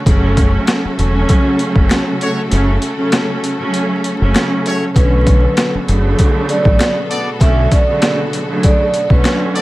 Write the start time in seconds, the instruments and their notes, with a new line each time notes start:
Already playing: string section F#4
0.06 fingered electric bass F#1, string section C#3 F#3 A3 C#4 A4, kick, closed hi-hat
0.37 kick, closed hi-hat
0.67 finger snap, snare, closed hi-hat
0.85 muted fingered electric bass stroke
0.96 fingered electric bass E1, string section C#3 F#3 A3 C#4, closed hi-hat
1.29 kick, closed hi-hat
1.59 closed hi-hat
1.76 fingered electric bass F#1, kick
1.89 finger snap, snare, closed hi-hat
2.21 horn section A3 F#4 C#5, closed hi-hat
2.50 fingered electric bass F#1, string section C#3 F#3 A3 C#4, closed hi-hat
2.82 closed hi-hat
2.97 string section C#3 F#3 A3 C#4
3.12 finger snap, snare, closed hi-hat
3.44 closed hi-hat
3.59 string section C#3 F#3 A3 C#4
3.74 closed hi-hat
4.04 closed hi-hat
4.20 fingered electric bass F#1, string section C#3 F#3 A3 C#4
4.34 finger snap, snare, closed hi-hat
4.66 horn section A3 F#4 C#5, closed hi-hat
4.95 fingered electric bass B1, string section B2 D3 F#3 A3 B3 C#4 F#4 A4, vibraphone B4, kick, closed hi-hat
5.27 kick, closed hi-hat
5.57 finger snap, snare, closed hi-hat
5.75 muted fingered electric bass stroke
5.87 fingered electric bass F#1, string section C#3 D3 F#3 A3, closed hi-hat
6.19 kick, closed hi-hat
6.49 vibraphone D5, closed hi-hat
6.65 fingered electric bass A1, kick
6.79 finger snap, snare, closed hi-hat
7.09 horn section B3 A4 D5, closed hi-hat
7.40 fingered electric bass B1, string section D3 F#3 A3 C#4, vibraphone E5, kick, closed hi-hat
7.71 vibraphone D5, kick, closed hi-hat
7.88 string section C#3 D3 F#3 A3
8.02 finger snap, snare, closed hi-hat
8.33 closed hi-hat
8.49 string section C#3 D3 F#3 A3
8.63 vibraphone D5, kick, closed hi-hat
8.94 closed hi-hat
9.09 fingered electric bass B1, string section D3 F#3 A3 C#4, vibraphone B4, kick
9.24 finger snap, snare, closed hi-hat
9.55 horn section B3 A4 D5, closed hi-hat